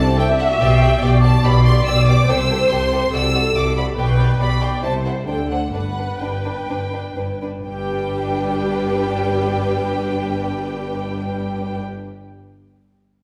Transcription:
Already playing: double bass section C2, cello section C3, viola section A4, violin section D5 A5
0.08 violin section C4
0.18 violin section A3 G5, viola section E5
0.29 violin section C4
0.40 violin section D4 F#5
0.49 violin section F#4
0.60 double bass section B1, cello section B2, violin section G4 D5 G5
0.80 violin section G4 D5
1.01 double bass section B1, cello section B2, violin section G4 D5, viola section D5
1.23 violin section G4 D5 A5
1.43 double bass section B1, cello section B2, violin section G4 D5 B5, viola section D5
1.64 violin section G4 D5 C6
1.85 double bass section B1, cello section B2, violin section G4 D5 E6
2.07 violin section G4 D5 D6
2.27 double bass section C2, cello section C3, violin section G4 A4 E6, viola section C5
2.51 violin section G4 A4
2.70 double bass section C2, cello section C3, violin section G4 A4 C6
2.92 violin section G4 A4
3.12 double bass section C2, cello section C3, violin section F#4 D5 E6, viola section A4
3.34 violin section F#4 D5
3.55 double bass section C2, cello section C3, violin section F#4 D5 D6
3.77 violin section F#4 D5 B5
3.97 double bass section B1, cello section B2, violin section G4 D5 G5, viola section B4
4.19 violin section G4 D5
4.39 double bass section B1, cello section B2, violin section G4 D5 B5, viola section D5
4.61 violin section G4 D5 G5
4.82 double bass section C2, cello section C3, violin section E4 C5 A5, viola section C5
5.05 violin section E4 C5 F#5
5.27 double bass section D2, cello section D3, violin section D4 C5 G5, viola section A4
5.50 violin section D4 C5 F#5
5.73 double bass section G1, cello section G2, violin section D4 B4 F#5, viola section B4
5.97 violin section D4 B4
6.20 double bass section G1, cello section G2, violin section D4 B4 G5
6.44 violin section D4 B4
6.68 double bass section G1, cello section G2, violin section D4 B4
6.93 violin section D4 B4
7.16 double bass section G1, cello section G2, violin section D4 B4
7.42 violin section D4 B4
7.66 double bass section G1, cello section G2, viola section G3 D4, violin section G4 B4 G5

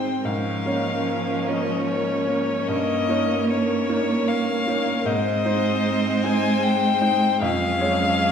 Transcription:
Already playing: cello G#3, viola C4, grand piano C4 D#4 C5, violin C5 G5
0.24 grand piano G#2, cello F3, viola C#4, violin A#4 F5
0.66 grand piano A#3 C#4 C#5
1.47 grand piano A#3 C#4 C#5, violin D#5
1.86 violin C#5
2.27 grand piano A#3 C#4 C#5
2.68 grand piano G2, cello A#3, violin D#5
3.09 grand piano A#3 D#4 C#5
3.50 violin C#5
3.89 grand piano A#3 D#4 C#5
4.28 violin F5
4.67 grand piano A#3 D#4 C#5
5.05 grand piano G#2, cello G#3, viola C4, violin C5 D#5
5.45 grand piano G#3 D#4 C5
6.23 grand piano G#3 D#4 C5, violin G#5
6.63 violin G5
7.01 grand piano G#3 D#4 C5
7.41 grand piano F2, cello F3, viola C#4, violin G#4 F5
7.81 grand piano G#3 C#4 C#5

